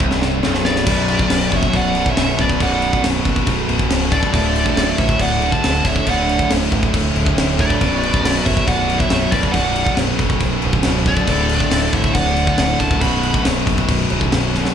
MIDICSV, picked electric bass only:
0, 0, Header, 1, 2, 480
1, 0, Start_track
1, 0, Key_signature, 2, "minor"
1, 0, Tempo, 433839
1, 966, Time_signature, 4, 2, 24, 8
1, 16312, End_track
2, 0, Start_track
2, 0, Title_t, "Picked electric bass"
2, 0, Program_c, 0, 34
2, 5, Note_on_c, 0, 24, 92
2, 451, Note_off_c, 0, 24, 0
2, 502, Note_on_c, 0, 23, 92
2, 940, Note_off_c, 0, 23, 0
2, 955, Note_on_c, 0, 23, 92
2, 1293, Note_off_c, 0, 23, 0
2, 1438, Note_on_c, 0, 23, 89
2, 1608, Note_off_c, 0, 23, 0
2, 1680, Note_on_c, 0, 30, 90
2, 1849, Note_off_c, 0, 30, 0
2, 1919, Note_on_c, 0, 23, 113
2, 2255, Note_off_c, 0, 23, 0
2, 2396, Note_on_c, 0, 23, 90
2, 2565, Note_off_c, 0, 23, 0
2, 2642, Note_on_c, 0, 23, 86
2, 2809, Note_off_c, 0, 23, 0
2, 2883, Note_on_c, 0, 23, 102
2, 3217, Note_off_c, 0, 23, 0
2, 3364, Note_on_c, 0, 23, 86
2, 3530, Note_off_c, 0, 23, 0
2, 3600, Note_on_c, 0, 30, 98
2, 3767, Note_off_c, 0, 30, 0
2, 3836, Note_on_c, 0, 23, 108
2, 4005, Note_off_c, 0, 23, 0
2, 4072, Note_on_c, 0, 23, 98
2, 4242, Note_off_c, 0, 23, 0
2, 4306, Note_on_c, 0, 25, 92
2, 4645, Note_off_c, 0, 25, 0
2, 4805, Note_on_c, 0, 26, 101
2, 5137, Note_off_c, 0, 26, 0
2, 5268, Note_on_c, 0, 26, 88
2, 5439, Note_off_c, 0, 26, 0
2, 5517, Note_on_c, 0, 33, 91
2, 5684, Note_off_c, 0, 33, 0
2, 5750, Note_on_c, 0, 26, 107
2, 6087, Note_off_c, 0, 26, 0
2, 6249, Note_on_c, 0, 26, 87
2, 6412, Note_off_c, 0, 26, 0
2, 6474, Note_on_c, 0, 26, 78
2, 6642, Note_off_c, 0, 26, 0
2, 6713, Note_on_c, 0, 26, 110
2, 7049, Note_off_c, 0, 26, 0
2, 7215, Note_on_c, 0, 26, 91
2, 7375, Note_off_c, 0, 26, 0
2, 7437, Note_on_c, 0, 33, 102
2, 7604, Note_off_c, 0, 33, 0
2, 7682, Note_on_c, 0, 26, 104
2, 7846, Note_off_c, 0, 26, 0
2, 7912, Note_on_c, 0, 26, 97
2, 8080, Note_off_c, 0, 26, 0
2, 8148, Note_on_c, 0, 26, 89
2, 8486, Note_off_c, 0, 26, 0
2, 8640, Note_on_c, 0, 23, 98
2, 8973, Note_off_c, 0, 23, 0
2, 9102, Note_on_c, 0, 23, 86
2, 9274, Note_off_c, 0, 23, 0
2, 9359, Note_on_c, 0, 30, 86
2, 9525, Note_off_c, 0, 30, 0
2, 9591, Note_on_c, 0, 23, 105
2, 9928, Note_off_c, 0, 23, 0
2, 10071, Note_on_c, 0, 23, 101
2, 10240, Note_off_c, 0, 23, 0
2, 10306, Note_on_c, 0, 23, 77
2, 10477, Note_off_c, 0, 23, 0
2, 10553, Note_on_c, 0, 23, 103
2, 10890, Note_off_c, 0, 23, 0
2, 11017, Note_on_c, 0, 23, 93
2, 11191, Note_off_c, 0, 23, 0
2, 11271, Note_on_c, 0, 30, 95
2, 11441, Note_off_c, 0, 30, 0
2, 11513, Note_on_c, 0, 23, 99
2, 11682, Note_off_c, 0, 23, 0
2, 11775, Note_on_c, 0, 23, 97
2, 11936, Note_off_c, 0, 23, 0
2, 12005, Note_on_c, 0, 25, 100
2, 12338, Note_off_c, 0, 25, 0
2, 12477, Note_on_c, 0, 26, 111
2, 12813, Note_off_c, 0, 26, 0
2, 12963, Note_on_c, 0, 26, 98
2, 13130, Note_off_c, 0, 26, 0
2, 13200, Note_on_c, 0, 33, 91
2, 13368, Note_off_c, 0, 33, 0
2, 13445, Note_on_c, 0, 26, 114
2, 13779, Note_off_c, 0, 26, 0
2, 13920, Note_on_c, 0, 26, 105
2, 14088, Note_off_c, 0, 26, 0
2, 14160, Note_on_c, 0, 25, 86
2, 14329, Note_off_c, 0, 25, 0
2, 14401, Note_on_c, 0, 23, 109
2, 14738, Note_off_c, 0, 23, 0
2, 14888, Note_on_c, 0, 23, 89
2, 15055, Note_off_c, 0, 23, 0
2, 15120, Note_on_c, 0, 30, 92
2, 15290, Note_off_c, 0, 30, 0
2, 15367, Note_on_c, 0, 23, 97
2, 15536, Note_off_c, 0, 23, 0
2, 15604, Note_on_c, 0, 23, 100
2, 15774, Note_off_c, 0, 23, 0
2, 15846, Note_on_c, 0, 23, 93
2, 16185, Note_off_c, 0, 23, 0
2, 16312, End_track
0, 0, End_of_file